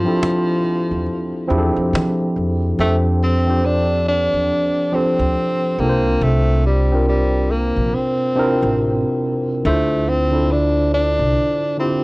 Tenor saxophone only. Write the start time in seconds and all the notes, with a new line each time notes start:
Already playing: F3
2.81 A3
3.23 C4
3.66 D4
4.09 D4
4.94 C4
5.80 A#3
6.23 A3
6.66 G3
7.09 G3
7.51 A#3
7.95 C4
9.66 A3
10.09 C4
10.52 D4
10.94 D4
11.80 C4